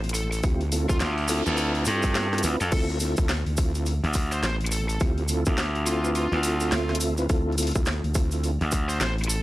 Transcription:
Already playing: A1
0.04 open hi-hat
0.09 closed hi-hat
0.14 A4, open hi-hat, cabasa
0.31 A4, open hi-hat, cabasa
0.43 D2 C4 E4 F4 G4, kick, open hi-hat, noise sweep, cabasa
0.61 open hi-hat
0.72 C4 E4 F4 A4, open hi-hat, cabasa
0.89 D2 C4 E4 F4 A4, kick, open hi-hat, cabasa
1.00 D2 F4, snare, open hi-hat, cabasa
1.18 open hi-hat
1.28 C4 E4 F4 A4, snare, open hi-hat, cabasa
1.46 D2 C4 E4 F4 A4 B4, cabasa
1.57 A4, open hi-hat, cabasa
1.75 open hi-hat
1.85 G2 C4 E4 F4 A4, open hi-hat, cabasa
2.03 kick, open hi-hat, cabasa
2.14 snare, open hi-hat, cabasa
2.32 C4 E4 F4 A4, cross-stick, snare, open hi-hat
2.38 closed hi-hat
2.43 D2 C4 E4 F4 B4, open hi-hat, cabasa
2.60 F2 A4, open hi-hat, cabasa
2.72 D2 C4 E4 F4 A4, kick, open hi-hat, crash, cabasa
2.89 open hi-hat
3.00 C4 E4 F4 A4, open hi-hat, cabasa
3.17 D2 C4 E4 F4 A4, kick, open hi-hat, cabasa
3.28 snare, open hi-hat, cabasa
3.46 D2, open hi-hat
3.57 C4 E4 F4 A4, kick, open hi-hat, cabasa
3.75 C4 E4 F4 A4, open hi-hat, cabasa
3.86 open hi-hat, cabasa
4.04 D2, open hi-hat
4.13 kick, cross-stick, open hi-hat, cabasa
4.32 C5, open hi-hat, cabasa
4.43 A1 C5, snare, open hi-hat, cabasa
4.61 open hi-hat
4.66 closed hi-hat
4.71 A4, open hi-hat, cabasa
4.89 A4, open hi-hat, cabasa
5.00 D2 C4 E4 F4 G4, kick, open hi-hat, cabasa
5.18 open hi-hat
5.28 C4 E4 F4 A4, open hi-hat, cabasa
5.45 D2 C4 E4 F4 A4, kick, open hi-hat, cabasa
5.58 snare, open hi-hat, cabasa
5.75 open hi-hat
5.86 C4 E4 F4 A4, open hi-hat, cabasa
6.04 C4 E4 F4 B4, cabasa
6.15 F4, open hi-hat, cabasa
6.32 D2, open hi-hat
6.43 C4 E4 F4 A4, open hi-hat, cabasa
6.60 C4 F4 A4 E5, open hi-hat, cabasa
6.71 D2, snare, open hi-hat, cabasa
6.89 cross-stick, snare, open hi-hat
6.95 closed hi-hat
7.00 open hi-hat, cabasa
7.17 C4 E4 F4 B4, open hi-hat, cabasa
7.29 D2 C4 E4 F4 A4, kick, open hi-hat, cabasa
7.52 open hi-hat
7.58 C4 E4 F4 A4, open hi-hat, cabasa
7.62 open hi-hat
7.67 open hi-hat
7.71 open hi-hat, cabasa
7.75 D2 C4 E4 F4 A4, kick
7.85 snare, open hi-hat, cabasa
8.04 D2, open hi-hat
8.14 C4 E4 F4 A4, kick, open hi-hat, cabasa
8.31 C4 E4 F4 A4, open hi-hat, cabasa
8.44 open hi-hat, cabasa
8.61 D2, open hi-hat
8.71 kick, cross-stick, open hi-hat, cabasa
8.89 C5, open hi-hat, cabasa
9.00 A1 C5, snare, open hi-hat, cabasa
9.18 open hi-hat
9.24 closed hi-hat
9.29 A4, open hi-hat, cabasa

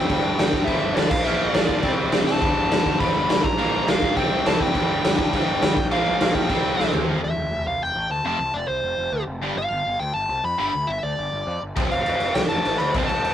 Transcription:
0.07 G1 G2 D3 G3 G5, kick, crash
0.25 G1
0.39 G1 G2 D3 G3, snare, crash
0.53 G1, kick
0.65 G1 G2 D3 G3 E5, kick, crash
0.82 G1
0.94 G1 G2 D3 G3 D5, snare, crash
1.10 A#1 F5, kick, crash
1.24 A#1 A#2 F3 A#3 E5, crash
1.39 A#1 D5
1.54 A#1 A#2 F3 A#3, snare, crash
1.69 A#1, kick
1.83 C2 C3 G3 C4, kick, crash
1.97 C2
2.12 C2 C3 G3 C4, snare, crash
2.26 C2 A5, snare
2.42 G1 G2 D3 G3, kick, crash
2.56 G1
2.70 G1 G2 D3 G3, snare, crash
2.86 G1, kick
2.99 G1 G2 D3 G3 B5, kick, crash
3.14 G1
3.28 G1 G2 D3 G3, snare, crash
3.44 A#1 A#5, kick
3.58 A#1 A#2 F3 A#3, crash
3.74 A#1
3.87 A#1 A#2 F3 A#3 F5, snare, crash
4.02 A#1, kick
4.16 C2 C3 G3 C4 G5, kick, crash
4.31 C2
4.45 C2 C3 G3 C4 A5, snare, crash
4.60 F#1 G5, kick
4.74 G1 G2 D3 G3, kick, crash
4.89 G1
5.04 G1 G2 D3 G3, snare, crash
5.18 G1 G5, kick
5.33 G1 G2 D3 G3, kick, crash
5.48 G1
5.62 G1 G2 D3 G3, snare, crash
5.76 A#1, kick
5.91 A#1 A#2 F3 A#3 F5, crash
6.06 A#1
6.20 A#1 A#2 F3 A#3, snare, crash
6.35 A#1 G5, kick
6.50 C2 C3 G3 C4, kick, crash
6.64 C2
6.78 C2 C3 G3 C4, snare
6.93 E2, floor tom
7.08 F1 F2 C3 F3
7.22 F1 E5
7.37 F1
7.51 F1
7.67 C2 F5
7.81 F1 G5
7.96 A1
8.10 D2 A5
8.24 F1 F2 C3 F3 A5
8.39 C2
8.54 F1 D5
8.68 C2 C5
8.82 F1
8.98 F1
9.12 D2
9.26 F1
9.41 G1 G2 D3 G3
9.56 G1 F5
9.71 G1
9.86 G1
10.00 D2 G5
10.14 G1 A5
10.29 C2
10.44 F2 B5
10.58 G1 G2 D3 G3 B5
10.74 D2
10.87 G1 E5
11.03 D2 D5
11.18 G1
11.32 G1
11.47 F2
11.62 G1
11.76 F1 F2 C3 F3, kick, crash
11.90 F1 F5, crash
12.05 F1, crash
12.20 F1, crash
12.34 C2 G5, snare, crash
12.49 F1 A5, crash
12.65 A1, crash
12.78 D2 B5, crash
12.94 F1 F2 C3 F3, kick, crash
13.07 C2 A5, crash
13.23 F1, crash

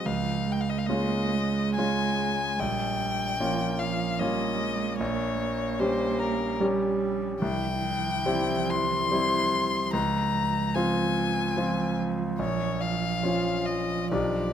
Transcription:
0.05 C#2 F3 F5
0.46 G#3
0.52 G5
0.61 F5
0.70 D#5
0.78 F5
0.86 G#3 A#3 C#4 F4 D#5
1.33 G#3
1.76 G#3 C#4 F4 G#5
2.59 A#1 G3 G5
3.40 F3 A#3 C#4 F4
3.79 F3 F5
4.20 G3 A#3 C#4 F4 D#5
4.61 G#3
4.99 A#1 A#3 C#5
5.40 A#3
5.79 G3 C#4 G4 C5
6.19 A#4
6.60 G3 C#4 G4
7.41 C2 E3 G5
8.26 G3 C4 E4
8.69 C6
9.11 G3 C4 E4
9.92 C#2 F3 A#5
10.75 F3 C4 F4 G#5
11.57 F3 C4 F4
12.39 A#1 C#5
12.81 F5
13.23 F3 C#4 F4
13.66 D#5
14.12 B1 F3 D4 G4 D5

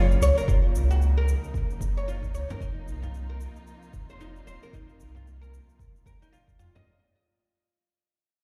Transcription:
Already playing: F#1 C#3 F#3 A#3 F5
0.11 shaker
0.21 C#2 C#5, shaker
0.38 A#4, shaker
0.48 F#1 D#4 F4, kick, shaker
0.75 C#2, shaker
0.91 F#4, shaker
1.02 shaker
1.17 A#4
1.28 shaker
1.44 shaker
1.54 kick, shaker
1.70 shaker
1.81 F#1, kick, shaker
1.97 C#5, shaker
2.08 F4, shaker
2.23 kick, shaker
2.34 C#2 C#5, shaker
2.50 A#4, frame drum, shaker
2.60 F1 C3 F3 A#3 D#4 F4, kick, shaker
2.88 C2, shaker
3.02 F4, frame drum, shaker
3.14 shaker
3.29 A#4
3.40 shaker
3.56 shaker
3.67 shaker
3.83 shaker
3.93 F1, kick, shaker
4.09 C5, shaker
4.21 D#4, shaker
4.36 shaker
4.47 D#1 C5, shaker
4.63 A#4, shaker
4.73 F1 D#4, kick, shaker
4.89 shaker
5.00 C2, shaker
5.15 F4, frame drum, shaker
5.27 shaker
5.41 A#4, shaker
5.54 shaker
5.69 shaker
5.79 kick, shaker
5.96 shaker
6.06 A#4, kick, shaker
6.22 D#4, shaker
6.32 F4, shaker
6.48 kick, shaker
6.59 F2 F4, shaker
6.75 D#5, frame drum, shaker

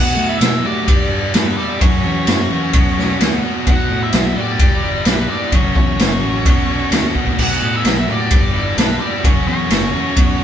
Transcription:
Already playing: B2 F#3 B3 D4 F#4 F#5
0.17 A3
0.29 E4 E5
0.41 B2 F#3, snare, ride bell
0.64 B2 F#3 A3 B3 D4 F#4 G4 D5
0.87 G2 D3 G3 B3 D4 G4, kick, ride bell
1.11 D4
1.34 G2 D4 G4 B4, snare, ride bell
1.56 G2 D3 G3 B3 D4 E4 G4 D5
1.81 F#2 C#3 F#3 A3 C#4 F#4 C#5, kick, ride bell
2.04 E3 C#4 C#5
2.27 F#2 F#3, snare, ride bell
2.50 F#2 C#3 E3 F#3 A3 C#4 F#4
2.73 B1 B2 F#3 B3 D4 F#4, kick, ride bell
2.97 D4, snare
3.20 D2 F#4, snare, ride bell
3.43 B2 F#3 B3 D4 F#4
3.66 B1 B2 F#3 B3 D4 F#4, kick, ride bell
3.70 F#4 F#5
3.90 A2
4.03 E4 E5
4.13 B1 F#3, snare, ride bell
4.36 A2 B2 F#3 B3 D4 F#4 D5
4.40 G4
4.59 G1 G2 D3 G3 B3 D4 G4, kick, ride bell
4.83 D4
5.05 B1 D4 G4 B4, snare, ride bell
5.28 G2 D3 G3 B3 D4 E4 G4 D5
5.51 F#1 F#2 C#3 F#3 A3 C#4 F#4 C#5, kick, ride bell
5.75 E2 C#4 C#5, kick
5.98 F#1 F#3, snare, ride bell
6.21 A1 F#2 C#3 F#3 A3 C#4 F#4
6.44 B1 B2 F#3 B3 D4 F#4, kick, ride bell
6.68 D4
6.91 D2 F#4, snare, ride bell
7.15 B2 F#3 B3 D4 F#4, kick
7.27 kick
7.38 B1 B2 F#3 B3 D4 F#4 B4, kick, crash
7.43 F#5
7.62 A2
7.75 E4 E5
7.85 B1 F#3, snare, ride bell
8.07 A2 F#3 B3 D4 F#4 G4
8.11 B2 D5
8.31 G1 G2 D3 G3 B3 D4 G4 B4, kick, ride bell
8.53 D4 E4 D5
8.77 B1 D4 G4 B4, snare, ride bell
9.00 G2 D3 G3 B3 D4 E4 G4 D5
9.23 F#1 F#2 C#3 F#3 A3 C#4 F#4 A4 C#5, kick, ride bell
9.46 E2 C#4 C#5
9.70 F#1 F#3, snare, ride bell
9.93 E2 F#2 C#3 F#3 A3 C#4 F#4
10.16 B1 B2 D3 F#3 B3 D4 F#4 B4, kick, ride bell
10.41 D4

